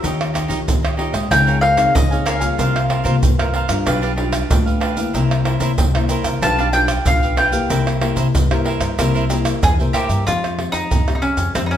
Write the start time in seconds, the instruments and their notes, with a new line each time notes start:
Already playing: nylon-string guitar C#4 F4 G4
0.02 upright bass D#2, nylon-string guitar D#3, cavaquinho D#4 G4 C#5 D#5, pandeiro, maracas, surdo
0.21 pandeiro, tamborim, maracas
0.33 cavaquinho D#4 G4 C#5 D#5, pandeiro, tamborim, maracas, surdo
0.48 upright bass D#3, nylon-string guitar C#4 F4 G4, cavaquinho D#4 G4 C#5 D#5, pandeiro, maracas, surdo
0.67 upright bass D#2, nylon-string guitar A#2, pandeiro, maracas, surdo
0.83 cavaquinho G4 C#5 D#5, pandeiro, tamborim, maracas
0.97 nylon-string guitar C#4 F4 G4, cavaquinho D#4 G4 C#5 D#5, pandeiro
1.12 upright bass G#2, cavaquinho G4 C#5 D#5, pandeiro, tamborim, maracas, surdo
1.31 upright bass C#2, nylon-string guitar C#3 C4 D#4 G#4, cavaquinho A#4 C#5 F5 G#5, mandolin G5, pandeiro, tamborim, maracas, surdo
1.47 cavaquinho A#4 C#5 F5 G#5, pandeiro, maracas
1.61 cavaquinho A#4 C#5 F5 G#5, mandolin F5, pandeiro
1.76 nylon-string guitar C4 D#4 G#4, pandeiro, tamborim, maracas, surdo
1.95 upright bass C#2, nylon-string guitar C#3, mandolin D#5, pandeiro, maracas, surdo
2.11 nylon-string guitar C4 D#4 G#4, cavaquinho C#5 F5 G#5, pandeiro, maracas
2.25 cavaquinho A#4 C#5 F5 G#5, mandolin F5, pandeiro, tamborim, maracas
2.40 nylon-string guitar G3 A#3 F4, cavaquinho C#5 F5 G#5, pandeiro, maracas, surdo
2.58 upright bass C2, nylon-string guitar C3, cavaquinho F4 A#4 C5 F5, pandeiro, maracas, surdo
2.76 pandeiro, tamborim, maracas
2.89 cavaquinho F4 A#4 C5 F5, pandeiro, tamborim, surdo
3.04 upright bass C3, nylon-string guitar G3 A#3 F4, cavaquinho F4 A#4 C5 F5, pandeiro, maracas, surdo
3.23 upright bass C2, nylon-string guitar G2, pandeiro, maracas, surdo
3.39 nylon-string guitar G3 A#3 F4, cavaquinho A#4 C5 F5, pandeiro, tamborim, maracas
3.53 cavaquinho F4 A#4 C5 F5, pandeiro
3.68 upright bass G2, nylon-string guitar G3 D4 F4, cavaquinho A#4 C5 F5, pandeiro, tamborim, maracas, surdo
3.86 upright bass B1, nylon-string guitar B2, cavaquinho D4 G4 B4 F5, pandeiro, tamborim, maracas, surdo
4.02 cavaquinho D4 G4 B4 F5, pandeiro, maracas
4.16 nylon-string guitar G3 D4 F4, cavaquinho D4 G4 B4 F5, pandeiro
4.33 pandeiro, tamborim, maracas, surdo
4.50 upright bass D2, nylon-string guitar B2 G3 D4 F4, pandeiro, maracas, surdo
4.66 cavaquinho G4 B4 F5, pandeiro, maracas
4.80 cavaquinho D4 G4 B4 F5, pandeiro, tamborim
4.96 nylon-string guitar A#3 C#4 E4, cavaquinho G4 B4 F5, pandeiro, maracas, surdo
5.13 upright bass C2, nylon-string guitar C3, cavaquinho E4 A#4 C5 E5, pandeiro, maracas, surdo
5.31 pandeiro, tamborim, maracas
5.45 cavaquinho E4 A#4 C5 E5, pandeiro, tamborim
5.60 upright bass C3, nylon-string guitar A#3 C#4 E4, cavaquinho E4 A#4 C5 E5, pandeiro, maracas, surdo
5.78 upright bass C2, nylon-string guitar G3, pandeiro, maracas, surdo
5.94 nylon-string guitar A#3 C#4 E4, cavaquinho A#4 C5 E5, pandeiro, tamborim, maracas
6.09 cavaquinho E4 A#4 C5 E5, pandeiro, maracas
6.23 upright bass C2, cavaquinho A#4 C5 E5, pandeiro, tamborim, maracas, surdo
6.41 upright bass B1, nylon-string guitar B2 G3 D4 F4, cavaquinho D4 G4 B4 F5, mandolin A5, pandeiro, tamborim, maracas, surdo
6.58 cavaquinho D4 G4 B4 F5, pandeiro, maracas
6.73 nylon-string guitar G3 D4 F4, cavaquinho D4 G4 B4 F5, mandolin G5, pandeiro, maracas
6.88 pandeiro, tamborim, maracas, surdo
7.06 upright bass B1, nylon-string guitar B2 G3 D4 F4, mandolin F5, pandeiro, maracas, surdo
7.22 cavaquinho G4 B4 F5, pandeiro, maracas
7.36 cavaquinho D4 G4 B4 F5, mandolin G5, pandeiro, tamborim
7.52 nylon-string guitar A#3 E4 G4, cavaquinho G4 B4 F5, pandeiro, maracas, surdo
7.69 upright bass C2, nylon-string guitar C3, cavaquinho E4 A#4 C5 E5, pandeiro, maracas, surdo
7.87 pandeiro, tamborim, maracas
8.01 nylon-string guitar A#3 E4 G4, cavaquinho E4 A#4 C5 E5, pandeiro, tamborim
8.16 upright bass C3, cavaquinho E4 A#4 C5 E5, pandeiro, maracas, surdo
8.34 upright bass C2, nylon-string guitar G2, pandeiro, maracas, surdo
8.51 nylon-string guitar A#3 E4 G4, cavaquinho A#4 C5 E5, pandeiro, tamborim, maracas
8.65 cavaquinho E4 A#4 C5 E5, pandeiro
8.80 upright bass G2, cavaquinho A#4 C5 E5, pandeiro, tamborim, maracas, surdo
8.98 upright bass C2, nylon-string guitar C3 A#3 E4 G4, cavaquinho E4 A#4 C5 E5, pandeiro, tamborim, maracas, surdo
9.14 cavaquinho E4 A#4 C5 E5, pandeiro, maracas
9.29 nylon-string guitar A#3 E4 G4, cavaquinho E4 A#4 C5 E5, pandeiro, maracas
9.45 pandeiro, tamborim, maracas, surdo
9.63 upright bass E2, nylon-string guitar G2, mandolin G#4, pandeiro, maracas, surdo
9.79 upright bass C3, nylon-string guitar A#3 E4 G4, cavaquinho A#4 C5 E5, pandeiro, maracas
9.93 upright bass A#2, cavaquinho E4 A#4 C5 E5, mandolin G4, pandeiro, tamborim, maracas
10.08 upright bass G2, cavaquinho A#4 C5 E5, pandeiro, maracas, surdo
10.26 upright bass F2, nylon-string guitar F3 G#3 C4 G4, mandolin F4, pandeiro, maracas, surdo
10.44 pandeiro, tamborim, maracas
10.58 nylon-string guitar G#3 C4 G4, pandeiro, tamborim
10.72 upright bass F2, mandolin D#4, pandeiro, maracas
10.91 upright bass F2, nylon-string guitar C3, pandeiro, maracas, surdo
11.07 nylon-string guitar G#3 C4 G4, pandeiro, tamborim, maracas
11.15 mandolin D#4
11.22 mandolin C#4, pandeiro
11.37 upright bass F2, pandeiro, maracas
11.55 upright bass F2, nylon-string guitar F3 G#3 C4 G4, mandolin C4, pandeiro, tamborim, maracas, surdo
11.66 mandolin D#4
11.71 mandolin C#4, pandeiro, maracas